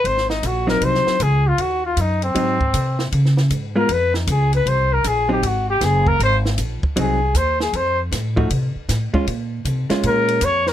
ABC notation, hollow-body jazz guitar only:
X:1
M:4/4
L:1/8
Q:"Swing" 1/4=156
K:Abmix
V:1 name="Hollow-body jazz guitar"
z3 [G,CE]3 z2 | z4 [G,CE] z3 | z3 [A,_CF] z4 | z3 [G,CE] z4 |
z4 [G,CE] z3 | z3 [F,=A,EG] z3 [_A,DF] | z3 [A,DF]3 z2 |]